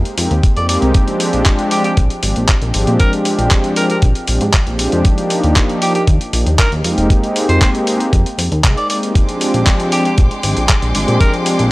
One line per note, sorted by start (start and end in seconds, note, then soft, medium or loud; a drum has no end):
0.05 closed hi-hat soft
0.17 0.29 F2 medium
0.17 0.30 G#3 medium
0.17 0.30 A#3 medium
0.17 0.30 C4 medium
0.17 0.31 D#4 medium
0.17 0.31 G4 loud
0.17 open hi-hat loud
0.31 0.41 D#2 medium
0.31 closed hi-hat soft
0.43 kick loud
0.43 closed hi-hat medium
0.56 0.78 F2 medium
0.56 0.91 G#3 medium
0.56 0.91 A#3 medium
0.56 0.92 C4 medium
0.56 0.92 D#4 medium
0.56 0.92 G4 medium
0.56 0.65 D5 medium
0.56 closed hi-hat soft
0.69 0.78 D5 medium
0.69 open hi-hat loud
0.82 0.93 C2 medium
0.82 closed hi-hat soft
0.94 1.30 F3 medium
0.94 1.30 G#3 medium
0.94 1.30 C4 medium
0.94 1.31 D4 medium
0.94 1.31 G4 medium
0.94 kick loud
0.94 closed hi-hat medium
1.08 closed hi-hat soft
1.20 open hi-hat medium
1.33 1.44 A#1 medium
1.33 1.68 F3 medium
1.33 1.68 G#3 medium
1.33 1.68 C4 medium
1.33 1.69 D4 medium
1.33 1.69 G4 medium
1.33 closed hi-hat soft
1.46 kick loud
1.46 clap loud
1.46 closed hi-hat medium
1.59 closed hi-hat soft
1.70 1.84 F3 medium
1.70 1.84 G#3 medium
1.70 1.84 C4 medium
1.70 1.84 D4 medium
1.70 1.80 G4 medium
1.70 1.84 G4 medium
1.70 open hi-hat loud
1.84 1.93 G4 medium
1.84 closed hi-hat soft
1.97 2.08 A#1 medium
1.97 kick loud
1.97 closed hi-hat medium
2.10 closed hi-hat soft
2.22 2.34 G#1 medium
2.22 2.35 F3 medium
2.22 2.36 G#3 medium
2.22 2.36 C4 medium
2.22 2.36 D4 medium
2.22 2.36 G4 medium
2.22 open hi-hat loud
2.36 2.47 A#1 medium
2.36 closed hi-hat soft
2.48 kick loud
2.48 clap loud
2.48 closed hi-hat medium
2.61 2.72 A#1 loud
2.61 2.97 F3 medium
2.61 2.97 G#3 medium
2.61 2.97 C4 medium
2.61 2.97 D4 medium
2.61 2.97 G4 medium
2.61 closed hi-hat soft
2.74 2.86 G#1 medium
2.74 open hi-hat loud
2.87 2.98 A#2 medium
2.87 closed hi-hat soft
2.99 3.35 F3 medium
2.99 3.36 G#3 medium
2.99 3.36 C4 medium
2.99 3.36 D4 medium
2.99 3.36 G4 medium
2.99 3.12 A#4 medium
2.99 kick loud
2.99 closed hi-hat medium
3.13 closed hi-hat soft
3.25 open hi-hat medium
3.38 3.49 A#1 medium
3.38 3.74 F3 medium
3.38 3.74 G#3 medium
3.38 3.74 C4 medium
3.38 3.74 D4 medium
3.38 3.74 G4 medium
3.38 closed hi-hat soft
3.51 kick loud
3.51 clap loud
3.51 closed hi-hat medium
3.64 closed hi-hat soft
3.76 3.89 F3 medium
3.76 3.89 G#3 medium
3.76 3.89 C4 medium
3.76 3.90 D4 medium
3.76 3.90 G4 medium
3.76 3.85 A#4 medium
3.76 open hi-hat medium
3.90 3.98 A#4 medium
3.90 closed hi-hat soft
4.02 4.14 A#1 medium
4.02 kick loud
4.02 closed hi-hat medium
4.15 closed hi-hat soft
4.27 4.39 A#1 medium
4.27 4.40 F3 medium
4.27 4.41 G#3 medium
4.27 4.41 C4 medium
4.27 4.41 D4 medium
4.27 4.41 G4 loud
4.27 open hi-hat medium
4.41 4.52 G#2 medium
4.41 closed hi-hat soft
4.53 kick loud
4.53 clap loud
4.53 closed hi-hat medium
4.66 4.88 A#1 medium
4.66 5.02 F3 medium
4.66 5.02 G#3 medium
4.66 5.02 C4 medium
4.66 5.02 D4 medium
4.66 5.02 G4 medium
4.66 closed hi-hat soft
4.79 open hi-hat loud
4.92 5.03 F2 medium
4.92 closed hi-hat soft
5.04 5.40 F3 medium
5.04 5.40 A#3 medium
5.04 5.41 D4 medium
5.04 5.41 D#4 medium
5.04 5.41 G4 medium
5.04 kick loud
5.04 closed hi-hat medium
5.18 closed hi-hat soft
5.30 open hi-hat medium
5.43 5.54 D#2 medium
5.43 5.78 F3 medium
5.43 5.79 A#3 medium
5.43 5.79 D4 medium
5.43 5.79 D#4 medium
5.43 5.79 G4 medium
5.43 closed hi-hat soft
5.56 kick loud
5.56 clap loud
5.56 closed hi-hat medium
5.70 closed hi-hat soft
5.81 5.94 F3 medium
5.81 5.95 A#3 medium
5.81 5.95 D4 medium
5.81 5.95 D#4 medium
5.81 5.91 G4 medium
5.81 5.95 G4 medium
5.81 open hi-hat medium
5.95 6.03 G4 medium
5.95 closed hi-hat soft
6.07 6.19 D#2 medium
6.07 kick loud
6.07 closed hi-hat medium
6.21 closed hi-hat soft
6.32 6.44 A#1 medium
6.32 6.46 F3 medium
6.32 6.46 A#3 medium
6.32 6.46 D4 medium
6.32 6.46 D#4 medium
6.32 6.46 G4 loud
6.32 open hi-hat medium
6.47 6.57 D#2 medium
6.47 closed hi-hat soft
6.59 6.71 A#4 medium
6.59 kick loud
6.59 clap loud
6.59 closed hi-hat medium
6.72 6.83 D#2 medium
6.72 7.07 G#3 medium
6.72 7.07 A#3 medium
6.72 7.07 C4 medium
6.72 7.07 D#4 medium
6.72 7.08 G4 medium
6.72 closed hi-hat soft
6.84 6.96 F2 medium
6.84 open hi-hat medium
6.98 7.08 F1 medium
6.98 closed hi-hat soft
7.10 7.46 G#3 medium
7.10 7.46 A#3 medium
7.10 7.46 C4 medium
7.10 7.46 D#4 medium
7.10 7.46 G4 medium
7.10 kick loud
7.10 closed hi-hat medium
7.24 closed hi-hat soft
7.36 open hi-hat medium
7.49 7.59 F2 medium
7.49 7.84 G#3 medium
7.49 7.84 A#3 medium
7.49 7.84 C4 medium
7.49 7.84 D#4 medium
7.49 7.84 G4 medium
7.49 7.57 C5 medium
7.49 closed hi-hat soft
7.62 7.70 C5 medium
7.62 kick loud
7.62 clap loud
7.62 closed hi-hat medium
7.75 closed hi-hat soft
7.86 8.00 G#3 medium
7.86 8.00 A#3 medium
7.86 8.00 C4 medium
7.86 8.00 D#4 medium
7.86 8.00 G4 medium
7.86 open hi-hat medium
8.00 closed hi-hat soft
8.13 8.24 F2 medium
8.13 kick loud
8.13 closed hi-hat medium
8.26 closed hi-hat soft
8.38 8.49 F2 medium
8.38 open hi-hat loud
8.52 8.62 D#2 medium
8.52 closed hi-hat soft
8.64 8.75 C2 medium
8.64 8.77 G#3 medium
8.64 8.77 A#3 medium
8.64 8.77 C4 medium
8.64 8.77 D#4 medium
8.64 8.77 G#4 loud
8.64 kick loud
8.64 clap loud
8.64 closed hi-hat medium
8.77 8.85 D5 medium
8.77 closed hi-hat soft
8.90 9.00 G#3 medium
8.90 9.00 A#3 medium
8.90 9.00 C4 medium
8.90 9.00 D#4 medium
8.90 9.00 G4 medium
8.90 8.98 D5 medium
8.90 open hi-hat medium
9.03 9.12 G#3 medium
9.03 9.13 A#3 medium
9.03 9.13 C4 medium
9.03 9.13 D#4 medium
9.03 9.13 G4 medium
9.03 closed hi-hat soft
9.15 9.51 F3 medium
9.15 11.72 G#3 medium
9.15 9.51 G#3 medium
9.15 9.51 C4 medium
9.15 9.51 D4 medium
9.15 9.52 G4 medium
9.15 11.72 G5 medium
9.15 11.72 C6 medium
9.15 11.72 D6 medium
9.15 kick loud
9.15 closed hi-hat medium
9.29 closed hi-hat soft
9.41 open hi-hat medium
9.54 9.65 A#1 medium
9.54 9.89 F3 medium
9.54 9.89 G#3 medium
9.54 9.89 C4 medium
9.54 9.90 D4 medium
9.54 9.90 G4 medium
9.54 closed hi-hat soft
9.66 kick loud
9.66 clap loud
9.66 closed hi-hat medium
9.80 closed hi-hat soft
9.92 10.05 F3 medium
9.92 10.05 G#3 medium
9.92 10.05 C4 medium
9.92 10.05 D4 medium
9.92 10.01 G4 medium
9.92 10.05 G4 medium
9.92 open hi-hat loud
10.05 10.14 G4 medium
10.05 closed hi-hat soft
10.18 10.29 A#1 medium
10.18 kick loud
10.18 closed hi-hat medium
10.31 closed hi-hat soft
10.43 10.55 G#1 medium
10.43 10.56 F3 medium
10.43 10.56 G#3 medium
10.43 10.56 C4 medium
10.43 10.56 D4 medium
10.43 10.56 G4 medium
10.43 open hi-hat loud
10.57 10.67 A#1 medium
10.57 closed hi-hat soft
10.69 kick loud
10.69 clap loud
10.69 closed hi-hat medium
10.82 10.93 A#1 medium
10.82 11.17 F3 medium
10.82 11.18 G#3 medium
10.82 11.18 C4 medium
10.82 11.18 D4 medium
10.82 11.18 G4 medium
10.82 closed hi-hat soft
10.95 11.06 G#1 medium
10.95 open hi-hat loud
11.08 11.19 A#2 medium
11.08 closed hi-hat soft
11.20 11.56 F3 medium
11.20 11.56 G#3 medium
11.20 11.56 C4 medium
11.20 11.56 D4 medium
11.20 11.56 G4 medium
11.20 11.33 A#4 medium
11.20 kick loud
11.20 closed hi-hat medium
11.34 closed hi-hat soft
11.46 open hi-hat loud
11.59 11.70 A#1 medium
11.59 11.72 F3 medium
11.59 11.72 G#3 medium
11.59 11.72 C4 medium
11.59 11.72 D4 medium
11.59 11.72 G4 medium
11.59 closed hi-hat soft